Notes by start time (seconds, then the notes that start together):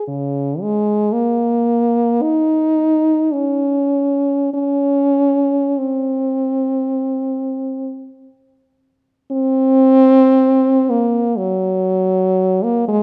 0.08 C#3
0.61 G#3
1.13 A#3
2.22 D#4
3.33 C#4
4.54 C#4
5.78 C4
9.32 C4
10.90 A#3
11.38 F#3
12.64 A#3
12.88 G#3